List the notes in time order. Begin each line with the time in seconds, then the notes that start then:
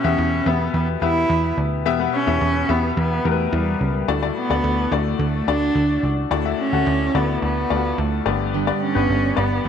Already playing: B2 B3 C#4 G4 E5
0.04 E2 B3 G4 E5
0.18 E2
0.46 E2 B3 G4 E5
0.74 E2 B3
1.02 E2 B3 E4 G4 E5
1.29 E2
1.57 D2
1.85 E2 B2 B3 G4 E5
2.00 B3 G4 F#5
2.14 C#4
2.27 E2 B3 G4 E5
2.41 E2
2.69 E2 B3 G4 E5
2.97 E2 B3
3.25 E2 A3 B3 G4 A#4
3.31 B4
3.52 E2 G3
3.80 C#2
4.08 D2 A2 A3 F#4 D5
4.22 A3 F#4 D5
4.38 B3
4.50 D2 A3 F#4 D5
4.64 D2
4.92 D2 A3 F#4 D5
5.19 D2 A3
5.47 D2 A3 D4 F#4 D5
5.75 D2
6.03 C#2
6.31 D2 A2 A3 F#4 D5
6.45 A3 F#4 E5
6.60 C#4
6.73 D2 A3 F#4 F#5
6.86 D2
7.14 D2 A3 B3 F#4 D5
7.42 D2 B3
7.70 D2 A3 F4 D5
7.77 F#4
7.98 D2 A3
8.26 G1 G2 D3 B3 G4 D5
8.53 G2 D3 G3 B3 D4 G4
8.67 B3 G4 D5
8.82 C#4
8.95 G1 G3 B3 D4 G4 B4
9.09 G1
9.36 G1 G3 B3 D4 G4 D5
9.65 G1 G3 B3